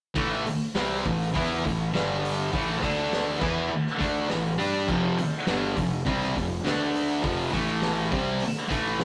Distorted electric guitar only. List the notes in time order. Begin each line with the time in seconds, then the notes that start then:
0.15 A2 E3 A3
0.47 muted distorted electric guitar stroke
0.75 C3 G3 C4
1.05 A2 E3
1.34 E3 B3 E4
1.65 A2 E3
1.93 G2 D3 G3
2.52 A2 E3 A3
2.82 D3 A3 D4
3.40 E3 B3 E4
3.70 muted distorted electric guitar stroke
3.98 D3 A3 D4
4.28 A2 E3
4.58 G3 D4 G4
4.87 F2 C3 F3
5.18 muted distorted electric guitar stroke
5.47 G2 D3 G3
5.77 F2 C3
6.05 C3 G3 C4
6.35 F2 C3
6.64 D3 A3 D4
7.22 F2 C3 F3
7.51 A2 E3 A3
8.12 C3 G3 C4
8.40 muted distorted electric guitar stroke
8.68 A2 E3 A3
8.99 F2 C3